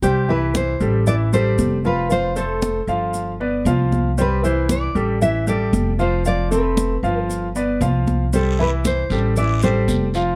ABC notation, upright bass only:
X:1
M:4/4
L:1/8
Q:1/4=116
K:C
V:1 name="Upright bass" clef=bass
C,,3 A,,,3 F,,,2- | F,,,3 G,,,3 C,,2- | C,,3 A,,,3 F,,,2- | F,,,3 G,,,3 C,,2- |
C,,3 A,,,3 F,,,2 |]